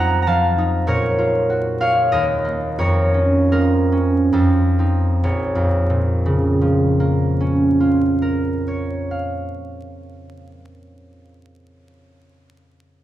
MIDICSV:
0, 0, Header, 1, 2, 480
1, 0, Start_track
1, 0, Key_signature, -5, "minor"
1, 0, Tempo, 613497
1, 683, Time_signature, 3, 2, 24, 8
1, 1659, Tempo, 668151
1, 2139, Tempo, 727273
1, 2619, Tempo, 817439
1, 3099, Tempo, 886263
1, 3579, Tempo, 849858
1, 5979, Tempo, 864553
1, 7960, End_track
2, 0, Start_track
2, 0, Title_t, "Harp"
2, 0, Program_c, 0, 46
2, 0, Note_on_c, 0, 41, 65
2, 0, Note_on_c, 0, 63, 53
2, 0, Note_on_c, 0, 65, 49
2, 0, Note_on_c, 0, 72, 68
2, 0, Note_on_c, 0, 75, 58
2, 0, Note_on_c, 0, 77, 89
2, 0, Note_on_c, 0, 78, 65
2, 0, Note_on_c, 0, 82, 90
2, 145, Note_off_c, 0, 65, 0
2, 165, Note_off_c, 0, 82, 0
2, 174, Note_on_c, 0, 82, 62
2, 207, Note_off_c, 0, 77, 0
2, 209, Note_on_c, 0, 53, 54
2, 211, Note_on_c, 0, 81, 80
2, 216, Note_on_c, 0, 77, 56
2, 254, Note_off_c, 0, 82, 0
2, 448, Note_off_c, 0, 63, 0
2, 457, Note_on_c, 0, 63, 58
2, 681, Note_on_c, 0, 46, 65
2, 686, Note_on_c, 0, 73, 82
2, 691, Note_on_c, 0, 70, 66
2, 701, Note_off_c, 0, 41, 0
2, 702, Note_off_c, 0, 81, 0
2, 703, Note_off_c, 0, 78, 0
2, 707, Note_off_c, 0, 75, 0
2, 708, Note_off_c, 0, 72, 0
2, 709, Note_off_c, 0, 63, 0
2, 927, Note_on_c, 0, 65, 50
2, 1171, Note_on_c, 0, 66, 44
2, 1402, Note_off_c, 0, 77, 0
2, 1403, Note_off_c, 0, 65, 0
2, 1411, Note_on_c, 0, 65, 52
2, 1414, Note_off_c, 0, 73, 0
2, 1414, Note_on_c, 0, 77, 80
2, 1423, Note_on_c, 0, 73, 62
2, 1587, Note_off_c, 0, 66, 0
2, 1658, Note_on_c, 0, 75, 83
2, 1660, Note_off_c, 0, 70, 0
2, 1662, Note_on_c, 0, 39, 60
2, 1669, Note_on_c, 0, 70, 58
2, 1678, Note_off_c, 0, 46, 0
2, 1678, Note_off_c, 0, 53, 0
2, 1680, Note_off_c, 0, 65, 0
2, 1680, Note_off_c, 0, 77, 0
2, 1685, Note_off_c, 0, 73, 0
2, 1895, Note_on_c, 0, 58, 48
2, 2136, Note_off_c, 0, 70, 0
2, 2137, Note_on_c, 0, 41, 59
2, 2139, Note_on_c, 0, 73, 76
2, 2145, Note_on_c, 0, 70, 56
2, 2157, Note_off_c, 0, 75, 0
2, 2158, Note_off_c, 0, 39, 0
2, 2370, Note_on_c, 0, 61, 48
2, 2613, Note_off_c, 0, 70, 0
2, 2620, Note_on_c, 0, 70, 74
2, 2623, Note_on_c, 0, 63, 40
2, 2627, Note_on_c, 0, 65, 51
2, 2851, Note_off_c, 0, 61, 0
2, 2858, Note_on_c, 0, 61, 48
2, 3026, Note_off_c, 0, 63, 0
2, 3090, Note_off_c, 0, 41, 0
2, 3095, Note_off_c, 0, 65, 0
2, 3095, Note_on_c, 0, 41, 54
2, 3100, Note_on_c, 0, 69, 58
2, 3101, Note_on_c, 0, 65, 43
2, 3116, Note_off_c, 0, 73, 0
2, 3117, Note_off_c, 0, 58, 0
2, 3118, Note_off_c, 0, 70, 0
2, 3119, Note_off_c, 0, 61, 0
2, 3346, Note_on_c, 0, 60, 39
2, 3350, Note_on_c, 0, 63, 43
2, 3588, Note_on_c, 0, 34, 57
2, 3589, Note_on_c, 0, 73, 50
2, 3596, Note_off_c, 0, 41, 0
2, 3597, Note_off_c, 0, 69, 0
2, 3600, Note_off_c, 0, 60, 0
2, 3602, Note_off_c, 0, 63, 0
2, 3767, Note_on_c, 0, 41, 46
2, 3962, Note_on_c, 0, 46, 50
2, 4165, Note_on_c, 0, 49, 46
2, 4366, Note_on_c, 0, 53, 49
2, 4583, Note_on_c, 0, 58, 47
2, 4813, Note_on_c, 0, 61, 45
2, 5032, Note_off_c, 0, 65, 0
2, 5039, Note_on_c, 0, 65, 44
2, 5274, Note_on_c, 0, 70, 45
2, 5525, Note_off_c, 0, 73, 0
2, 5531, Note_on_c, 0, 73, 38
2, 5776, Note_on_c, 0, 77, 36
2, 5790, Note_off_c, 0, 34, 0
2, 5970, Note_off_c, 0, 41, 0
2, 6162, Note_off_c, 0, 46, 0
2, 6361, Note_off_c, 0, 49, 0
2, 6521, Note_off_c, 0, 53, 0
2, 6735, Note_off_c, 0, 58, 0
2, 6960, Note_off_c, 0, 61, 0
2, 7183, Note_off_c, 0, 65, 0
2, 7263, Note_off_c, 0, 70, 0
2, 7264, Note_off_c, 0, 77, 0
2, 7268, Note_off_c, 0, 73, 0
2, 7960, End_track
0, 0, End_of_file